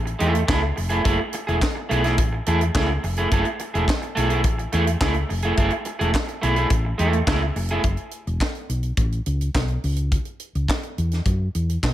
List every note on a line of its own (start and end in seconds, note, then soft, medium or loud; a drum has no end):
0.00 0.13 A1 loud
0.06 muted clean electric guitar stroke soft
0.06 closed hi-hat soft
0.19 0.42 E2 medium
0.19 0.40 A3 medium
0.19 0.34 E4 medium
0.19 0.33 G#4 medium
0.19 closed hi-hat medium
0.34 muted clean electric guitar stroke soft
0.34 closed hi-hat medium
0.48 0.70 C#2 loud
0.48 0.62 A3 medium
0.48 0.62 E4 medium
0.48 0.61 G#4 medium
0.48 kick loud
0.48 snare loud
0.48 clap medium
0.62 muted clean electric guitar stroke soft
0.76 0.99 F1 medium
0.76 muted clean electric guitar stroke soft
0.76 open hi-hat medium
0.89 1.02 A3 soft
0.89 1.01 E4 medium
0.89 1.01 G#4 medium
0.89 closed hi-hat medium
1.04 1.16 F#1 loud
1.04 1.18 A3 medium
1.04 1.19 E4 medium
1.04 1.18 G#4 medium
1.04 kick loud
1.04 closed hi-hat medium
1.20 muted clean electric guitar stroke soft
1.33 muted clean electric guitar stroke soft
1.33 closed hi-hat medium
1.47 1.59 E1 medium
1.47 1.59 A3 soft
1.47 1.59 E4 medium
1.47 1.58 G#4 medium
1.47 closed hi-hat soft
1.61 muted clean electric guitar stroke soft
1.61 kick loud
1.61 snare loud
1.61 clap medium
1.75 muted clean electric guitar stroke medium
1.89 2.18 B1 medium
1.89 2.03 A3 medium
1.89 2.03 E4 medium
1.89 2.03 G#4 medium
1.89 closed hi-hat medium
2.04 2.16 A3 soft
2.04 2.15 E4 medium
2.04 2.15 G#4 medium
2.04 snare soft
2.04 closed hi-hat soft
2.18 2.40 A1 medium
2.18 muted clean electric guitar stroke soft
2.18 kick loud
2.18 closed hi-hat medium
2.33 muted clean electric guitar stroke soft
2.46 2.69 E2 medium
2.46 2.60 A3 medium
2.46 2.61 E4 medium
2.46 2.61 G#4 medium
2.46 closed hi-hat medium
2.61 muted clean electric guitar stroke soft
2.61 closed hi-hat soft
2.75 2.96 C#2 loud
2.75 2.89 A3 medium
2.75 2.89 E4 medium
2.75 2.88 G#4 medium
2.75 kick loud
2.75 snare loud
2.75 clap medium
2.90 muted clean electric guitar stroke medium
3.04 3.25 F1 medium
3.04 muted clean electric guitar stroke soft
3.04 open hi-hat medium
3.17 3.29 A3 medium
3.17 3.28 E4 medium
3.17 3.28 G#4 medium
3.17 closed hi-hat medium
3.31 3.42 F#1 loud
3.31 3.45 A3 medium
3.31 3.46 E4 medium
3.31 3.45 G#4 medium
3.31 kick loud
3.31 closed hi-hat medium
3.45 muted clean electric guitar stroke medium
3.45 closed hi-hat soft
3.59 muted clean electric guitar stroke soft
3.59 closed hi-hat medium
3.74 3.85 E1 medium
3.74 3.85 A3 medium
3.74 3.85 E4 medium
3.74 3.84 G#4 medium
3.74 closed hi-hat soft
3.88 muted clean electric guitar stroke soft
3.88 kick loud
3.88 snare loud
3.88 clap medium
4.02 muted clean electric guitar stroke soft
4.02 closed hi-hat soft
4.15 4.44 B1 medium
4.15 4.29 A3 medium
4.15 4.29 E4 medium
4.15 4.28 G#4 medium
4.15 closed hi-hat medium
4.29 4.41 A3 medium
4.29 4.41 E4 medium
4.29 4.40 G#4 medium
4.29 closed hi-hat soft
4.44 4.66 A1 loud
4.44 muted clean electric guitar stroke soft
4.44 kick loud
4.44 closed hi-hat medium
4.58 muted clean electric guitar stroke soft
4.58 closed hi-hat soft
4.72 4.94 E2 loud
4.72 4.86 A3 medium
4.72 4.86 E4 medium
4.72 4.85 G#4 medium
4.72 closed hi-hat medium
4.86 muted clean electric guitar stroke soft
4.86 closed hi-hat medium
5.01 5.22 C#2 loud
5.01 5.14 A3 medium
5.01 5.15 E4 medium
5.01 5.14 G#4 medium
5.01 kick loud
5.01 snare loud
5.01 clap medium
5.14 muted clean electric guitar stroke soft
5.14 closed hi-hat soft
5.29 5.51 F1 medium
5.29 muted clean electric guitar stroke soft
5.29 open hi-hat medium
5.42 5.55 A3 medium
5.42 5.54 E4 medium
5.42 5.54 G#4 medium
5.42 closed hi-hat soft
5.57 5.68 F#1 loud
5.57 5.71 A3 medium
5.57 5.72 E4 medium
5.57 5.71 G#4 medium
5.57 kick loud
5.57 closed hi-hat medium
5.70 muted clean electric guitar stroke medium
5.70 closed hi-hat soft
5.85 muted clean electric guitar stroke soft
5.85 closed hi-hat medium
5.99 6.11 E1 medium
5.99 6.11 A3 medium
5.99 6.10 E4 medium
5.99 6.10 G#4 medium
5.99 closed hi-hat soft
6.14 muted clean electric guitar stroke soft
6.14 kick loud
6.14 snare loud
6.14 clap medium
6.27 muted clean electric guitar stroke soft
6.27 closed hi-hat soft
6.42 6.64 B1 medium
6.42 6.55 A3 medium
6.42 6.56 E4 medium
6.42 6.55 G#4 loud
6.42 closed hi-hat medium
6.56 6.68 A3 medium
6.56 6.67 E4 medium
6.56 6.67 G#4 medium
6.56 closed hi-hat soft
6.70 6.92 A1 loud
6.70 muted clean electric guitar stroke soft
6.70 kick loud
6.70 closed hi-hat medium
6.85 muted clean electric guitar stroke soft
6.98 7.21 E2 medium
6.98 7.19 A3 medium
6.98 7.13 E4 medium
6.98 7.11 G#4 medium
6.98 closed hi-hat medium
7.12 muted clean electric guitar stroke soft
7.12 closed hi-hat soft
7.27 7.49 C#2 medium
7.27 7.41 A3 medium
7.27 7.41 E4 medium
7.27 7.41 G#4 medium
7.27 kick loud
7.27 snare loud
7.27 clap medium
7.43 muted clean electric guitar stroke soft
7.56 7.77 F1 medium
7.56 muted clean electric guitar stroke soft
7.56 open hi-hat medium
7.69 7.81 E4 medium
7.69 7.81 G#4 medium
7.69 closed hi-hat medium
7.73 7.82 A3 soft
7.84 7.95 F#1 loud
7.84 kick loud
7.84 closed hi-hat medium
7.97 closed hi-hat soft
8.11 closed hi-hat soft
8.27 8.38 E1 medium
8.27 closed hi-hat soft
8.40 kick medium
8.40 snare loud
8.40 clap medium
8.55 closed hi-hat soft
8.69 8.91 B1 medium
8.69 closed hi-hat medium
8.83 closed hi-hat soft
8.97 9.19 A1 medium
8.97 kick loud
8.97 closed hi-hat medium
9.12 closed hi-hat soft
9.26 9.48 C#2 medium
9.26 closed hi-hat medium
9.41 closed hi-hat soft
9.55 9.76 B1 medium
9.55 kick loud
9.55 snare medium
9.55 clap medium
9.68 closed hi-hat soft
9.84 10.16 C#2 medium
9.84 open hi-hat medium
9.96 closed hi-hat soft
10.12 kick loud
10.12 closed hi-hat medium
10.25 closed hi-hat soft
10.40 closed hi-hat medium
10.55 10.66 C#2 medium
10.55 closed hi-hat soft
10.68 kick medium
10.68 snare loud
10.68 clap medium
10.83 closed hi-hat soft
10.98 11.19 E2 medium
10.98 closed hi-hat medium
11.12 snare soft
11.12 closed hi-hat soft
11.26 11.47 F#2 medium
11.26 kick loud
11.26 closed hi-hat medium
11.55 11.76 E2 medium
11.55 closed hi-hat medium
11.70 closed hi-hat soft
11.83 11.94 B2 medium
11.83 kick loud
11.83 snare medium
11.83 clap medium